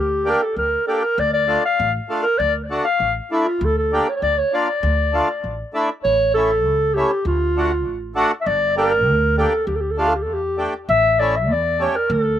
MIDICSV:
0, 0, Header, 1, 4, 480
1, 0, Start_track
1, 0, Key_signature, -1, "minor"
1, 0, Tempo, 607903
1, 931, Time_signature, 2, 2, 24, 8
1, 9786, End_track
2, 0, Start_track
2, 0, Title_t, "Clarinet"
2, 0, Program_c, 0, 71
2, 0, Note_on_c, 0, 67, 91
2, 234, Note_on_c, 0, 70, 81
2, 246, Note_off_c, 0, 67, 0
2, 336, Note_on_c, 0, 69, 71
2, 348, Note_off_c, 0, 70, 0
2, 453, Note_off_c, 0, 69, 0
2, 457, Note_on_c, 0, 70, 75
2, 677, Note_off_c, 0, 70, 0
2, 689, Note_on_c, 0, 69, 74
2, 811, Note_on_c, 0, 70, 87
2, 823, Note_off_c, 0, 69, 0
2, 941, Note_on_c, 0, 74, 99
2, 953, Note_off_c, 0, 70, 0
2, 1049, Note_off_c, 0, 74, 0
2, 1054, Note_on_c, 0, 74, 89
2, 1276, Note_off_c, 0, 74, 0
2, 1306, Note_on_c, 0, 77, 82
2, 1523, Note_off_c, 0, 77, 0
2, 1654, Note_on_c, 0, 69, 69
2, 1759, Note_off_c, 0, 69, 0
2, 1763, Note_on_c, 0, 70, 83
2, 1881, Note_on_c, 0, 74, 90
2, 1893, Note_off_c, 0, 70, 0
2, 2007, Note_off_c, 0, 74, 0
2, 2246, Note_on_c, 0, 77, 80
2, 2473, Note_off_c, 0, 77, 0
2, 2616, Note_on_c, 0, 64, 71
2, 2729, Note_on_c, 0, 65, 80
2, 2741, Note_off_c, 0, 64, 0
2, 2880, Note_on_c, 0, 69, 94
2, 2892, Note_off_c, 0, 65, 0
2, 2981, Note_off_c, 0, 69, 0
2, 2985, Note_on_c, 0, 69, 72
2, 3231, Note_on_c, 0, 73, 68
2, 3243, Note_off_c, 0, 69, 0
2, 3247, Note_off_c, 0, 73, 0
2, 3285, Note_on_c, 0, 73, 63
2, 3333, Note_off_c, 0, 73, 0
2, 3338, Note_on_c, 0, 74, 91
2, 3458, Note_on_c, 0, 73, 80
2, 3470, Note_off_c, 0, 74, 0
2, 3591, Note_on_c, 0, 74, 73
2, 3603, Note_off_c, 0, 73, 0
2, 4541, Note_off_c, 0, 74, 0
2, 4767, Note_on_c, 0, 73, 91
2, 4992, Note_off_c, 0, 73, 0
2, 5008, Note_on_c, 0, 69, 78
2, 5481, Note_on_c, 0, 67, 84
2, 5493, Note_off_c, 0, 69, 0
2, 5726, Note_off_c, 0, 67, 0
2, 5739, Note_on_c, 0, 65, 80
2, 6422, Note_off_c, 0, 65, 0
2, 6639, Note_on_c, 0, 76, 72
2, 6684, Note_on_c, 0, 74, 119
2, 6695, Note_off_c, 0, 76, 0
2, 6925, Note_off_c, 0, 74, 0
2, 6929, Note_on_c, 0, 70, 92
2, 7376, Note_off_c, 0, 70, 0
2, 7406, Note_on_c, 0, 69, 79
2, 7629, Note_off_c, 0, 69, 0
2, 7636, Note_on_c, 0, 67, 59
2, 7704, Note_on_c, 0, 69, 62
2, 7715, Note_off_c, 0, 67, 0
2, 7743, Note_on_c, 0, 67, 54
2, 7755, Note_off_c, 0, 69, 0
2, 7824, Note_on_c, 0, 69, 62
2, 7836, Note_off_c, 0, 67, 0
2, 7888, Note_on_c, 0, 67, 61
2, 7900, Note_off_c, 0, 69, 0
2, 7959, Note_on_c, 0, 69, 52
2, 7971, Note_off_c, 0, 67, 0
2, 8017, Note_on_c, 0, 67, 58
2, 8029, Note_off_c, 0, 69, 0
2, 8071, Note_on_c, 0, 69, 62
2, 8083, Note_off_c, 0, 67, 0
2, 8163, Note_on_c, 0, 67, 71
2, 8175, Note_off_c, 0, 69, 0
2, 8371, Note_off_c, 0, 67, 0
2, 8604, Note_on_c, 0, 76, 106
2, 8838, Note_on_c, 0, 74, 85
2, 8850, Note_off_c, 0, 76, 0
2, 8970, Note_on_c, 0, 76, 78
2, 8982, Note_off_c, 0, 74, 0
2, 9098, Note_on_c, 0, 74, 94
2, 9110, Note_off_c, 0, 76, 0
2, 9332, Note_on_c, 0, 73, 81
2, 9344, Note_off_c, 0, 74, 0
2, 9443, Note_on_c, 0, 70, 81
2, 9455, Note_off_c, 0, 73, 0
2, 9573, Note_on_c, 0, 69, 82
2, 9585, Note_off_c, 0, 70, 0
2, 9786, Note_off_c, 0, 69, 0
2, 9786, End_track
3, 0, Start_track
3, 0, Title_t, "Accordion"
3, 0, Program_c, 1, 21
3, 198, Note_on_c, 1, 58, 62
3, 202, Note_on_c, 1, 62, 53
3, 203, Note_on_c, 1, 67, 74
3, 324, Note_off_c, 1, 58, 0
3, 326, Note_off_c, 1, 62, 0
3, 326, Note_off_c, 1, 67, 0
3, 693, Note_on_c, 1, 58, 62
3, 694, Note_on_c, 1, 62, 53
3, 700, Note_on_c, 1, 67, 63
3, 812, Note_off_c, 1, 58, 0
3, 812, Note_off_c, 1, 62, 0
3, 815, Note_off_c, 1, 67, 0
3, 1162, Note_on_c, 1, 62, 57
3, 1165, Note_on_c, 1, 57, 55
3, 1165, Note_on_c, 1, 65, 63
3, 1287, Note_off_c, 1, 62, 0
3, 1288, Note_off_c, 1, 57, 0
3, 1289, Note_off_c, 1, 65, 0
3, 1647, Note_on_c, 1, 57, 53
3, 1656, Note_on_c, 1, 65, 65
3, 1661, Note_on_c, 1, 62, 45
3, 1770, Note_off_c, 1, 57, 0
3, 1775, Note_off_c, 1, 65, 0
3, 1777, Note_off_c, 1, 62, 0
3, 2132, Note_on_c, 1, 57, 58
3, 2136, Note_on_c, 1, 62, 54
3, 2137, Note_on_c, 1, 66, 67
3, 2253, Note_off_c, 1, 57, 0
3, 2255, Note_off_c, 1, 62, 0
3, 2256, Note_off_c, 1, 66, 0
3, 2614, Note_on_c, 1, 57, 53
3, 2618, Note_on_c, 1, 62, 54
3, 2626, Note_on_c, 1, 64, 67
3, 2734, Note_off_c, 1, 57, 0
3, 2736, Note_off_c, 1, 62, 0
3, 2740, Note_off_c, 1, 64, 0
3, 3099, Note_on_c, 1, 58, 56
3, 3101, Note_on_c, 1, 62, 52
3, 3109, Note_on_c, 1, 67, 69
3, 3217, Note_off_c, 1, 58, 0
3, 3217, Note_off_c, 1, 62, 0
3, 3222, Note_off_c, 1, 67, 0
3, 3579, Note_on_c, 1, 62, 52
3, 3581, Note_on_c, 1, 58, 62
3, 3583, Note_on_c, 1, 65, 68
3, 3696, Note_off_c, 1, 62, 0
3, 3697, Note_off_c, 1, 58, 0
3, 3699, Note_off_c, 1, 65, 0
3, 4048, Note_on_c, 1, 57, 64
3, 4052, Note_on_c, 1, 62, 55
3, 4063, Note_on_c, 1, 65, 67
3, 4171, Note_off_c, 1, 57, 0
3, 4172, Note_off_c, 1, 62, 0
3, 4178, Note_off_c, 1, 65, 0
3, 4530, Note_on_c, 1, 57, 68
3, 4534, Note_on_c, 1, 62, 59
3, 4540, Note_on_c, 1, 64, 76
3, 4651, Note_off_c, 1, 57, 0
3, 4653, Note_off_c, 1, 62, 0
3, 4656, Note_off_c, 1, 64, 0
3, 5014, Note_on_c, 1, 57, 61
3, 5020, Note_on_c, 1, 61, 58
3, 5028, Note_on_c, 1, 64, 64
3, 5133, Note_off_c, 1, 57, 0
3, 5136, Note_off_c, 1, 61, 0
3, 5140, Note_off_c, 1, 64, 0
3, 5494, Note_on_c, 1, 57, 52
3, 5501, Note_on_c, 1, 61, 55
3, 5504, Note_on_c, 1, 64, 67
3, 5612, Note_off_c, 1, 57, 0
3, 5616, Note_off_c, 1, 61, 0
3, 5617, Note_off_c, 1, 64, 0
3, 5973, Note_on_c, 1, 57, 58
3, 5980, Note_on_c, 1, 62, 53
3, 5985, Note_on_c, 1, 66, 66
3, 6091, Note_off_c, 1, 57, 0
3, 6095, Note_off_c, 1, 62, 0
3, 6097, Note_off_c, 1, 66, 0
3, 6438, Note_on_c, 1, 57, 73
3, 6442, Note_on_c, 1, 62, 65
3, 6445, Note_on_c, 1, 66, 92
3, 6563, Note_off_c, 1, 57, 0
3, 6565, Note_off_c, 1, 62, 0
3, 6566, Note_off_c, 1, 66, 0
3, 6919, Note_on_c, 1, 58, 63
3, 6925, Note_on_c, 1, 62, 54
3, 6928, Note_on_c, 1, 67, 72
3, 7043, Note_off_c, 1, 58, 0
3, 7046, Note_off_c, 1, 62, 0
3, 7047, Note_off_c, 1, 67, 0
3, 7400, Note_on_c, 1, 58, 53
3, 7407, Note_on_c, 1, 62, 56
3, 7410, Note_on_c, 1, 67, 65
3, 7523, Note_off_c, 1, 58, 0
3, 7526, Note_off_c, 1, 62, 0
3, 7528, Note_off_c, 1, 67, 0
3, 7875, Note_on_c, 1, 57, 63
3, 7881, Note_on_c, 1, 62, 57
3, 7881, Note_on_c, 1, 65, 71
3, 8000, Note_off_c, 1, 57, 0
3, 8003, Note_off_c, 1, 62, 0
3, 8003, Note_off_c, 1, 65, 0
3, 8350, Note_on_c, 1, 57, 57
3, 8352, Note_on_c, 1, 62, 52
3, 8359, Note_on_c, 1, 67, 61
3, 8477, Note_off_c, 1, 57, 0
3, 8478, Note_off_c, 1, 62, 0
3, 8482, Note_off_c, 1, 67, 0
3, 8840, Note_on_c, 1, 57, 58
3, 8844, Note_on_c, 1, 61, 58
3, 8847, Note_on_c, 1, 64, 69
3, 8962, Note_off_c, 1, 57, 0
3, 8964, Note_off_c, 1, 61, 0
3, 8965, Note_off_c, 1, 64, 0
3, 9309, Note_on_c, 1, 57, 58
3, 9319, Note_on_c, 1, 61, 51
3, 9322, Note_on_c, 1, 67, 67
3, 9436, Note_off_c, 1, 57, 0
3, 9441, Note_off_c, 1, 61, 0
3, 9442, Note_off_c, 1, 67, 0
3, 9786, End_track
4, 0, Start_track
4, 0, Title_t, "Upright bass"
4, 0, Program_c, 2, 32
4, 0, Note_on_c, 2, 38, 88
4, 250, Note_off_c, 2, 38, 0
4, 446, Note_on_c, 2, 38, 72
4, 591, Note_off_c, 2, 38, 0
4, 931, Note_on_c, 2, 38, 97
4, 1219, Note_off_c, 2, 38, 0
4, 1417, Note_on_c, 2, 33, 87
4, 1560, Note_off_c, 2, 33, 0
4, 1893, Note_on_c, 2, 38, 88
4, 2181, Note_off_c, 2, 38, 0
4, 2368, Note_on_c, 2, 33, 74
4, 2514, Note_off_c, 2, 33, 0
4, 2850, Note_on_c, 2, 38, 95
4, 3139, Note_off_c, 2, 38, 0
4, 3333, Note_on_c, 2, 38, 81
4, 3477, Note_off_c, 2, 38, 0
4, 3813, Note_on_c, 2, 38, 99
4, 4101, Note_off_c, 2, 38, 0
4, 4293, Note_on_c, 2, 33, 67
4, 4437, Note_off_c, 2, 33, 0
4, 4774, Note_on_c, 2, 33, 77
4, 5247, Note_off_c, 2, 33, 0
4, 5247, Note_on_c, 2, 37, 77
4, 5536, Note_off_c, 2, 37, 0
4, 5725, Note_on_c, 2, 38, 91
4, 6204, Note_off_c, 2, 38, 0
4, 6204, Note_on_c, 2, 33, 85
4, 6493, Note_off_c, 2, 33, 0
4, 6683, Note_on_c, 2, 31, 92
4, 7161, Note_off_c, 2, 31, 0
4, 7161, Note_on_c, 2, 38, 76
4, 7451, Note_off_c, 2, 38, 0
4, 7635, Note_on_c, 2, 38, 89
4, 8122, Note_off_c, 2, 38, 0
4, 8122, Note_on_c, 2, 40, 75
4, 8411, Note_off_c, 2, 40, 0
4, 8596, Note_on_c, 2, 33, 94
4, 9076, Note_off_c, 2, 33, 0
4, 9076, Note_on_c, 2, 40, 75
4, 9366, Note_off_c, 2, 40, 0
4, 9552, Note_on_c, 2, 38, 100
4, 9786, Note_off_c, 2, 38, 0
4, 9786, End_track
0, 0, End_of_file